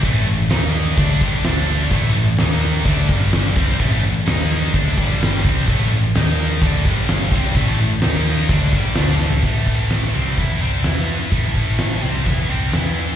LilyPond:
<<
  \new Staff \with { instrumentName = "Distorted electric guitar" } { \clef bass \time 4/4 \key a \minor \tempo 4 = 128 <a, e a>8 <a, e>8 <dis ais dis'>4 <d a d'>8 <g, d g>8 <d a d'>4 | <a, e a>8 <a, e>8 <dis ais dis'>4 <d a d'>8 <g, d g>4 <c g c'>8 | <a, e a>8 <a, e>8 <dis ais dis'>4 <d a d'>8 <g, d g>4 <c g c'>8 | <a, e a>8 <a, e>8 <dis ais dis'>4 <d a d'>8 <g, d g>4 <c g c'>8 |
<a, e a>8 <a, e>8 <dis ais dis'>4 <d a d'>8 <g, d g>8 <d a d'>4 | <a, e a>4. <c g c'>8 <e b e'>8 <c g c'>8 <e b e'>4 | <a, e a>4. <c g c'>8 <e b e'>8 <c g c'>8 <e b e'>4 | }
  \new Staff \with { instrumentName = "Picked electric bass" } { \clef bass \time 4/4 \key a \minor a,,8 a,,8 dis,4 d,8 g,,8 d,4 | a,,8 a,,8 dis,4 d,8 g,,4 c,8 | a,,8 a,,8 dis,4 d,8 g,,4 c,8 | a,,8 a,,8 dis,4 d,8 g,,4 c,8 |
a,,8 a,,8 dis,4 d,8 g,,8 d,4 | a,,4. c,8 e,8 c,8 e,4 | a,,4. c,8 e,8 c,8 e,4 | }
  \new DrumStaff \with { instrumentName = "Drums" } \drummode { \time 4/4 <cymc bd>4 <cymc sn>4 <cymc bd>8 bd8 <cymc sn>4 | <cymc bd>4 <cymc sn>4 <cymc bd>8 bd16 sn16 <cymc sn>8 bd8 | <cymc bd>16 sn8. <cymc sn>4 <cymc bd>8 bd16 sn16 <cymc sn>8 bd8 | <cymc bd>4 <cymc sn>4 <cymc bd>8 bd8 <cymc sn>8 <cymc bd>8 |
<cymc bd>16 sn8. <cymc sn>4 <cymc bd>8 bd8 <cymc sn>8 sn16 tomfh16 | <cymc bd>8 bd8 <hho sn>4 <hho bd>4 <hho sn>4 | <hho bd>8 bd8 <hho sn>4 <hho bd>4 <hho sn>4 | }
>>